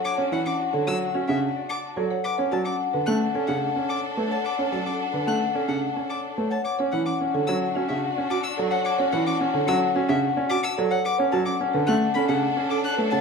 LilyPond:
<<
  \new Staff \with { instrumentName = "Violin" } { \time 4/4 \key d \major \tempo 4 = 109 d'''16 r16 fis''16 d'''16 r8 e'''16 r8 e''16 r8 d'''16 r8. | d'''16 r16 a''16 d'''16 r8 fis'''16 r8 fis''16 r8 d'''16 r8 a''16 | d'''16 r16 a''16 d'''16 r8 fis'''16 r8 fis''16 r8 d'''16 r8 a''16 | d'''16 r16 fis''16 d'''16 r8 e'''16 r8 e''16 r8 d'''16 e'''16 r16 fis''16 |
d'''16 r16 fis''16 d'''16 r8 e'''16 r8 e''16 r8 d'''16 e'''16 r16 fis''16 | d'''16 r16 a''16 d'''16 r8 fis'''16 r16 b''16 fis''16 r8 d'''16 fis'''16 r16 a''16 | }
  \new Staff \with { instrumentName = "Harp" } { \time 4/4 \key d \major <cis'' d'' e'' fis'' a''>8 e''16 fis''8 cis''16 fis''8 e''16 fis''8 d''16 a''8 d''16 fis''16 | b'8 d''16 fis''8 b'16 fis''8 d''16 fis''8 cis''16 a''8 cis''16 fis''16 | b'8 d''16 fis''8 b'16 fis''8 d''16 fis''8 cis''16 a''8 cis''16 fis''16 | cis''8 e''16 fis''8 cis''16 fis''8 e''16 fis''8 d''16 a''8 d''16 fis''16 |
cis''8 e''16 fis''8 cis''16 fis''8 e''16 fis''8 d''16 a''8 d''16 fis''16 | b'8 d''16 fis''8 b'16 fis''8 d''16 fis''8 cis''16 a''8 cis''16 fis''16 | }
  \new Staff \with { instrumentName = "Marimba" } { \time 4/4 \key d \major r16 cis''16 e'16 cis'16 r16 a'16 r8 fis'16 d'16 r4 a'16 cis''16 | r16 cis''16 fis'16 cis'16 r16 b'16 cis'16 r16 a'16 d'16 r4 b'16 cis''16 | r16 cis''16 fis'16 cis'16 r16 b'16 cis'16 r16 a'16 d'16 r4 b'16 cis''16 | r16 cis''16 e'16 cis'16 r16 a'16 cis'16 r16 fis'16 d'16 r8 fis'16 r16 a'16 cis''16 |
r16 cis''16 e'16 cis'16 r16 a'16 cis'16 r16 fis'16 d'16 r8 fis'16 r16 a'16 cis''16 | r16 cis''16 fis'16 cis'16 r16 b'16 cis'16 r16 a'16 d'16 r16 cis'16 a'16 r16 b'16 cis''16 | }
  \new Staff \with { instrumentName = "Violin section" } { \time 4/4 \key d \major <d' fis'>2.~ <d' fis'>8. r16 | <d' a'>1~ | <d' a'>2.~ <d' a'>8. r16 | <d' fis'>1~ |
<d' fis'>2.~ <d' fis'>8. r16 | <d' a'>1 | }
  \new Staff \with { instrumentName = "Grand piano" } { \time 4/4 \key d \major r16 cis'16 e16 r8 d16 fis16 r16 cis'16 cis16 r4 fis16 r16 | r16 cis'16 fis16 r8 d16 a16 r16 cis'16 cis16 r16 cis'16 r8 a16 r16 | r16 cis'16 fis16 r8 d16 a16 r16 cis'16 cis16 r16 cis'16 r8 a16 r16 | r16 cis'16 e16 r16 cis'16 d16 fis16 r16 cis'16 cis16 r16 cis'16 r8 fis16 r16 |
r16 cis'16 e16 r16 cis'16 d16 fis16 r16 cis'16 cis16 r16 cis'16 r8 fis16 r16 | r16 cis'16 fis16 r16 cis'16 d16 a16 r16 cis'16 cis16 r16 cis'16 r8 a16 cis16 | }
>>